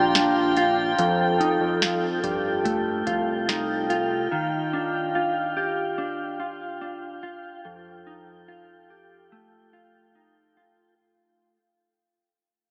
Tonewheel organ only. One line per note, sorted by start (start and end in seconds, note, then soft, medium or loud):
0.00 0.95 D4 medium
0.00 7.61 F4 medium
0.00 4.28 G5 medium
0.99 4.29 A4 medium
4.31 7.62 F5 soft
4.31 10.94 G5 soft
7.65 10.95 F4 soft
7.65 10.95 A4 soft